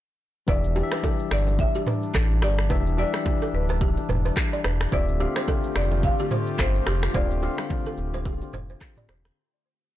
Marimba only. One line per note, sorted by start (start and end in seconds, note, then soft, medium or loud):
0.49 1.31 D5 loud
1.32 1.45 D5 loud
1.60 2.39 E5 loud
2.43 2.98 D5 loud
2.99 3.56 D5 loud
3.55 4.61 B4 medium
4.93 5.72 D5 loud
5.76 6.02 D5 medium
6.04 6.61 F5 loud
6.60 7.17 C5 medium
7.15 8.22 D5 medium